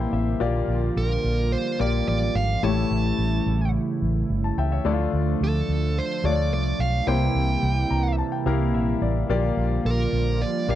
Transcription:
0.00 0.39 C3 medium
0.00 0.43 C3 medium
0.00 0.39 E3 medium
0.00 0.39 G3 medium
0.00 0.40 A#3 medium
0.00 2.59 A#3 medium
0.00 0.39 E4 medium
0.00 0.43 E4 medium
0.00 0.41 G4 medium
0.00 0.43 C5 medium
0.00 0.11 G5 medium
0.00 0.42 A5 medium
0.13 0.33 A1 medium
0.13 0.39 E5 medium
0.40 0.61 A#1 loud
0.40 1.20 A#2 medium
0.40 2.61 D3 medium
0.40 2.61 F3 medium
0.40 4.81 G3 medium
0.40 1.13 A#3 medium
0.40 1.13 F4 medium
0.40 2.61 F4 medium
0.40 1.13 G4 medium
0.40 1.13 D5 medium
0.68 0.88 A#1 medium
0.96 1.16 A#1 loud
0.96 1.54 A#4 medium
1.24 1.54 A#1 loud
1.52 1.80 C5 medium
1.79 2.00 A#1 medium
1.79 2.34 A#3 medium
1.79 2.34 F4 medium
1.79 2.34 G4 medium
1.79 2.34 D5 medium
1.79 2.07 D5 medium
2.08 2.28 A1 medium
2.08 2.37 D5 medium
2.35 2.55 G#1 loud
2.35 2.64 F5 medium
2.63 2.83 A1 medium
2.63 3.43 A2 medium
2.63 4.83 C#3 medium
2.63 4.83 E3 medium
2.63 3.35 A3 medium
2.63 7.04 A3 medium
2.63 4.83 E4 medium
2.63 3.35 E4 medium
2.63 3.36 G4 medium
2.63 3.36 C#5 medium
2.63 3.70 A5 loud
2.91 3.11 A1 medium
3.18 3.39 A1 medium
3.46 3.76 A1 medium
4.02 4.22 A1 loud
4.30 4.50 G1 medium
4.44 4.57 A5 medium
4.58 4.78 C#2 medium
4.58 4.70 E5 medium
4.58 4.71 G5 medium
4.72 4.98 C#5 medium
4.72 4.98 E5 medium
4.85 5.05 D2 loud
4.85 5.65 D3 medium
4.85 7.05 F3 medium
4.85 5.57 A3 medium
4.85 5.57 D4 medium
4.85 7.05 D4 medium
4.85 4.92 E4 medium
4.85 5.58 D5 medium
4.92 5.61 F4 medium
5.13 5.33 D2 medium
5.41 5.61 D2 medium
5.41 5.99 A4 medium
5.68 5.99 D2 medium
5.98 6.26 C5 medium
6.24 6.52 D2 loud
6.24 6.78 A3 medium
6.24 6.78 D4 medium
6.24 6.79 F4 medium
6.24 6.31 C#5 medium
6.24 6.52 D5 medium
6.32 6.82 D5 medium
6.52 6.72 C2 medium
6.52 6.81 D5 medium
6.79 6.99 B1 medium
6.79 7.08 F5 medium
7.07 7.27 C2 medium
7.07 9.28 C3 medium
7.07 7.87 C3 medium
7.07 9.27 E3 medium
7.07 10.75 G3 medium
7.07 7.79 A#3 medium
7.07 10.75 A#3 medium
7.07 7.80 E4 medium
7.07 9.27 E4 medium
7.07 7.80 G4 medium
7.07 7.80 C5 medium
7.07 8.15 G5 loud
7.35 7.55 C2 medium
7.63 7.83 C2 loud
7.91 8.21 C2 medium
7.91 8.17 A#5 medium
8.18 8.31 A5 medium
8.32 8.45 G5 medium
8.46 8.74 C2 loud
8.46 9.00 A#3 medium
8.46 9.01 E4 medium
8.46 9.01 G4 medium
8.46 9.01 A#4 medium
8.46 8.72 F5 medium
8.74 8.94 A#1 medium
8.74 9.00 E5 medium
9.01 9.22 A1 loud
9.01 9.28 D5 medium
9.29 9.49 A#1 loud
9.29 10.09 A#2 medium
9.29 10.75 D3 medium
9.29 10.75 F3 medium
9.29 10.02 A#3 medium
9.29 10.02 F4 medium
9.29 10.75 F4 medium
9.29 10.02 G4 medium
9.29 10.02 D5 loud
9.57 9.77 A#1 medium
9.85 10.05 A#1 loud
9.85 10.43 A#4 medium
10.12 10.43 A#1 medium
10.42 10.70 D5 loud
10.68 10.75 A#1 loud
10.68 10.75 A#3 medium
10.68 10.75 F4 medium
10.68 10.75 G4 medium
10.68 10.75 D5 medium
10.68 10.75 F5 loud

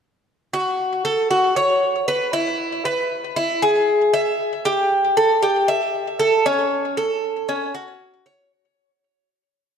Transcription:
0.53 1.03 F#4 medium
1.05 1.30 A4 medium
1.31 1.56 F#4 medium
1.56 2.06 C#5 medium
2.08 2.33 B4 medium
2.33 2.83 E4 medium
2.85 3.35 B4 medium
3.36 3.62 E4 medium
3.62 4.12 G#4 medium
4.13 4.64 E5 medium
4.65 5.15 G4 medium
5.17 5.42 A4 medium
5.43 5.68 G4 medium
5.68 6.18 E5 medium
6.19 6.45 A4 medium
6.46 6.96 C#4 medium
6.97 7.47 A4 medium
7.49 7.74 C#4 medium
7.74 8.24 F#4 medium
8.26 8.51 C#5 medium

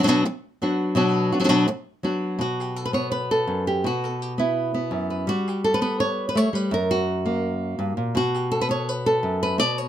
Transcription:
0.00 0.07 F#3 medium
0.00 0.03 F#4 medium
0.04 0.24 B2 medium
0.04 0.08 B3 medium
0.04 0.07 D4 medium
0.04 0.07 F#4 medium
0.08 0.24 F#3 medium
0.08 0.25 B3 medium
0.08 0.25 D4 loud
0.08 0.25 F#4 loud
0.25 muted nylon-string guitar stroke medium
0.62 0.95 F#3 medium
0.62 0.95 B3 medium
0.62 0.96 D4 medium
0.62 0.96 F#4 medium
0.95 1.31 B2 medium
0.95 1.31 F#3 medium
0.95 1.31 B3 medium
0.95 1.32 D4 medium
0.95 1.31 F#4 medium
1.32 1.39 B3 medium
1.32 1.39 D4 medium
1.32 1.39 F#4 medium
1.40 1.43 F#3 medium
1.40 1.43 B3 medium
1.40 1.44 D4 medium
1.40 1.44 F#4 medium
1.44 1.48 F#3 medium
1.44 1.48 B3 medium
1.44 1.48 D4 medium
1.44 1.48 F#4 medium
1.49 1.66 B2 medium
1.49 1.67 F#3 medium
1.49 1.67 B3 medium
1.49 1.67 D4 loud
1.49 1.67 F#4 medium
1.68 muted nylon-string guitar stroke medium
2.03 2.39 F#3 medium
2.03 2.39 B3 medium
2.03 2.39 D4 medium
2.03 2.39 F#4 medium
2.39 3.47 B2 medium
2.39 2.85 F#4 medium
2.60 2.76 G4 medium
2.76 3.21 A4 medium
2.86 2.94 B4 medium
2.93 4.07 B3 medium
2.93 3.11 C#5 medium
3.12 3.65 B4 medium
3.31 3.66 A4 medium
3.47 3.83 F#2 medium
3.67 3.84 G4 medium
3.84 4.92 B2 medium
3.84 4.39 F#4 medium
4.04 4.22 A4 medium
4.22 4.33 G4 medium
4.38 4.73 B3 medium
4.38 5.28 E4 medium
4.74 5.26 B3 soft
4.91 5.27 F#2 medium
5.10 5.26 B4 soft
5.27 6.52 G3 medium
5.27 5.73 F#4 medium
5.48 5.64 G4 medium
5.64 6.09 A4 medium
5.74 5.81 B4 medium
5.81 6.35 B3 medium
5.81 5.99 B4 medium
6.00 6.27 C#5 loud
6.29 6.37 B4 medium
6.35 6.53 A3 medium
6.35 6.55 C#5 medium
6.53 6.71 G3 medium
6.53 6.72 B4 medium
6.71 7.78 F#2 medium
6.71 7.26 A#4 medium
6.91 8.16 F#4 medium
7.26 8.13 A#3 medium
7.79 7.97 G2 medium
7.97 8.15 A#2 medium
8.15 9.23 B2 medium
8.15 8.61 F#4 loud
8.34 8.51 G4 medium
8.52 8.96 A4 medium
8.61 8.70 B4 medium
8.69 9.81 B3 medium
8.69 8.89 C#5 medium
8.89 9.42 B4 loud
9.06 9.77 A4 loud
9.23 9.59 F#2 medium
9.43 9.59 B4 medium
9.58 9.88 B2 medium
9.58 9.78 D5 loud
9.78 9.88 C#5 medium

